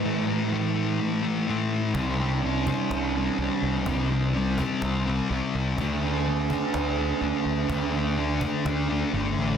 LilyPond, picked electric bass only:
\new Staff \with { instrumentName = "Picked electric bass" } { \clef bass \time 4/4 \key c \major \tempo 4 = 125 r1 | c,2 c,4 c,16 r16 c,8 | c,2 c,4 c,16 r16 c,8 | d,2 d,4 d,16 r16 d,8 |
d,2 d,4 g,,8 a,,8 | }